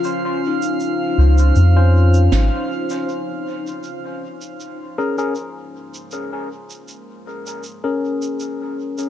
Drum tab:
SH |x--xx--xx--xx--x|x--xx--xx--xx--x|x--xx--xx--xx--x|
SD |------------o---|----------------|----------------|